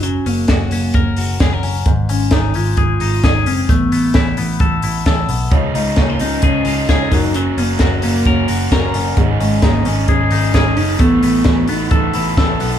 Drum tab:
HH |xoxoxoxo|xoxoxoxo|xoxoxoxo|xoxoxoxo|
SD |--o---o-|--o---o-|--o---o-|--o---o-|
BD |--o-o-o-|o-o-o-o-|o-o-o-o-|o-o-o-oo|

HH |xoxoxoxo|xoxoxoxo|xoxoxoxo|
SD |--o---o-|--o---o-|--o---o-|
BD |--o-o-o-|o-o-o-o-|o-o-o-o-|